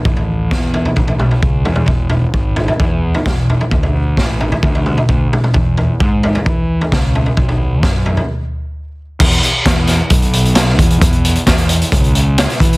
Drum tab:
CC |----------------|----------------|----------------|----------------|
HH |----------------|----------------|----------------|----------------|
SD |----o-----------|------------o---|----o-----------|------------o---|
T2 |----------o---oo|------------o---|----------o---oo|------------o---|
FT |oo----oooo-o--oo|o-o---ooo--o--oo|oo----oooo-o--oo|o-o---ooo--o--oo|
BD |o---o---o---o---|o---o---o---o---|o---o---o---o---|o---o---o---o---|

CC |----------------|x---------------|----------------|
HH |----------------|-xx-x-x-xxxxx-xx|xxxxxxxxxxx-xxxx|
SD |----o-----------|----o-o-----oo--|----oo------oo--|
T2 |----------------|----------------|----------------|
FT |oo----oo--------|----------------|----------------|
BD |o---o-----------|o---o---o-----o-|o---o---o-----o-|